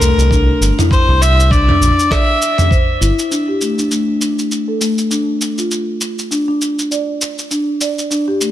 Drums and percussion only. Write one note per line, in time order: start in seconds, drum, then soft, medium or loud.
0.02 shaker medium
0.19 shaker soft
0.31 kick loud
0.31 shaker soft
0.62 shaker medium
0.79 mid tom medium
0.79 shaker soft
0.91 kick loud
0.91 shaker soft
1.22 shaker medium
1.40 shaker soft
1.51 kick loud
1.51 shaker soft
1.69 mid tom medium
1.82 shaker medium
1.99 shaker soft
2.11 kick loud
2.11 cross-stick medium
2.11 shaker soft
2.42 shaker medium
2.58 mid tom medium
2.58 shaker soft
2.71 kick loud
2.71 shaker soft
3.02 shaker medium
3.19 shaker soft
3.32 shaker soft
3.61 shaker medium
3.79 shaker soft
3.91 shaker soft
4.21 shaker medium
4.39 shaker soft
4.52 shaker soft
4.81 shaker medium
4.98 shaker soft
5.11 shaker soft
5.41 shaker medium
5.58 shaker soft
5.71 shaker soft
6.01 shaker medium
6.19 shaker soft
6.32 shaker soft
6.62 shaker medium
6.79 shaker soft
6.92 shaker soft
7.22 shaker medium
7.38 shaker soft
7.51 shaker soft
7.81 shaker medium
7.99 shaker soft
8.11 shaker soft
8.41 shaker medium